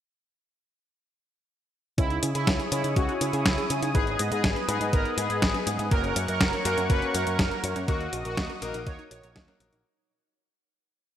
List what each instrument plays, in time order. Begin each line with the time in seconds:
1.98 picked electric bass C#2, grand piano C#4 D#4 E4 G#4, synth arpeggio sound C#4, analog polysynth E4, analog synth pad C#5 G#5 D#6, kick, closed hi-hat
2.10 synth arpeggio sound D#4, closed hi-hat
2.23 picked electric bass C#3, synth arpeggio sound E4, closed hi-hat
2.35 picked electric bass C#3, analog polysynth E4, synth arpeggio sound G#4, closed hi-hat
2.47 picked electric bass C#2, synth arpeggio sound C#5, kick, snare, closed hi-hat
2.60 synth arpeggio sound G#4, closed hi-hat
2.72 picked electric bass C#3, grand piano C#4 E4 G#4 D#5, synth arpeggio sound E4, analog polysynth E4, closed hi-hat
2.84 picked electric bass C#3, synth arpeggio sound D#4, closed hi-hat
2.96 picked electric bass C#2, synth arpeggio sound C#4, analog polysynth F#4, kick, closed hi-hat
3.09 synth arpeggio sound D#4, closed hi-hat
3.21 picked electric bass C#3, analog polysynth E4, synth arpeggio sound E4, closed hi-hat
3.33 picked electric bass C#3, synth arpeggio sound G#4, closed hi-hat
3.46 picked electric bass C#2, synth arpeggio sound C#5, kick, snare, closed hi-hat
3.58 synth arpeggio sound G#4, closed hi-hat
3.70 picked electric bass C#3, synth arpeggio sound E4, closed hi-hat
3.82 picked electric bass C#3, synth arpeggio sound D#4, closed hi-hat
3.95 picked electric bass G#1, synth arpeggio sound B3, grand piano B3 D#4 G#4 B4, analog polysynth G#4, analog synth pad B4 D#5, kick, closed hi-hat
4.07 synth arpeggio sound D#4, closed hi-hat
4.19 picked electric bass G#2, synth arpeggio sound G#4, closed hi-hat
4.32 picked electric bass G#2, analog polysynth G#4, synth arpeggio sound B4, closed hi-hat
4.44 picked electric bass G#1, synth arpeggio sound D#5, kick, snare, closed hi-hat
4.56 synth arpeggio sound B4, closed hi-hat
4.68 picked electric bass G#2, grand piano B3 D#4 G#4 B4, synth arpeggio sound G#4, analog polysynth G#4, closed hi-hat
4.81 picked electric bass G#2, synth arpeggio sound D#4, closed hi-hat
4.93 picked electric bass G#1, synth arpeggio sound B3, analog polysynth A#4, kick, closed hi-hat
5.05 synth arpeggio sound D#4, closed hi-hat
5.17 picked electric bass G#2, analog polysynth G#4, synth arpeggio sound G#4, closed hi-hat
5.30 picked electric bass G#2, synth arpeggio sound B4, closed hi-hat
5.42 picked electric bass G#1, synth arpeggio sound D#5, kick, snare, closed hi-hat
5.54 synth arpeggio sound B4, snare, closed hi-hat
5.67 picked electric bass G#2, synth arpeggio sound G#4, closed hi-hat
5.79 picked electric bass G#2, synth arpeggio sound D#4, closed hi-hat
5.91 picked electric bass F#1, synth arpeggio sound A#3, grand piano A#3 C#4 F#4 A#4, analog polysynth A#4, analog synth pad A#4 C#5 F#5 C#6, kick, closed hi-hat
6.04 synth arpeggio sound C#4, closed hi-hat
6.16 picked electric bass F#2, synth arpeggio sound F#4, closed hi-hat
6.28 picked electric bass F#2, analog polysynth A#4, synth arpeggio sound A#4, closed hi-hat
6.41 picked electric bass F#1, synth arpeggio sound C#5, kick, snare, closed hi-hat
6.53 synth arpeggio sound A#4, closed hi-hat
6.65 picked electric bass F#2, grand piano A#3 C#4 F#4 A#4, synth arpeggio sound F#4, analog polysynth A#4, closed hi-hat
6.78 picked electric bass F#2, synth arpeggio sound C#4, closed hi-hat
6.90 picked electric bass F#1, synth arpeggio sound A#3, analog polysynth B4, kick, closed hi-hat
7.02 synth arpeggio sound C#4, closed hi-hat
7.14 picked electric bass F#2, synth arpeggio sound F#4, analog polysynth A#4, closed hi-hat
7.27 picked electric bass F#2, synth arpeggio sound A#4, closed hi-hat
7.39 picked electric bass F#1, synth arpeggio sound C#5, kick, snare, closed hi-hat
7.51 synth arpeggio sound A#4, closed hi-hat
7.64 picked electric bass F#2, synth arpeggio sound F#4, closed hi-hat
7.76 picked electric bass F#2, synth arpeggio sound C#4, closed hi-hat
7.88 picked electric bass D#2, synth arpeggio sound A#3, grand piano A#3 D#4 F#4 A#4, analog polysynth F#4, analog synth pad D#5 D#6, kick, closed hi-hat
8.01 synth arpeggio sound D#4, closed hi-hat
8.13 picked electric bass A#1, synth arpeggio sound F#4, closed hi-hat
8.25 picked electric bass A#1, analog polysynth F#4, synth arpeggio sound A#4, closed hi-hat
8.37 picked electric bass D#2, synth arpeggio sound D#5, kick, snare, closed hi-hat
8.50 synth arpeggio sound A#4, closed hi-hat
8.62 picked electric bass A#1, grand piano A#3 D#4 F#4 A#4, synth arpeggio sound F#4, analog polysynth A#4, closed hi-hat
8.74 picked electric bass A#1, synth arpeggio sound D#4, closed hi-hat
8.87 picked electric bass D#2, synth arpeggio sound A#3, analog polysynth C#5, kick, closed hi-hat
8.99 synth arpeggio sound D#4, closed hi-hat
9.11 picked electric bass A#1, synth arpeggio sound F#4, analog polysynth C#5, closed hi-hat
9.23 picked electric bass A#1, synth arpeggio sound A#4, closed hi-hat
9.36 picked electric bass D#2, synth arpeggio sound D#5, kick, snare, closed hi-hat
9.48 grand piano A#3 D#4 F#4 A#4, synth arpeggio sound A#4, snare, closed hi-hat
9.60 picked electric bass A#1, grand piano A#3 D#4 F#4 A#4, synth arpeggio sound F#4, closed hi-hat
9.73 picked electric bass A#1, synth arpeggio sound D#4, closed hi-hat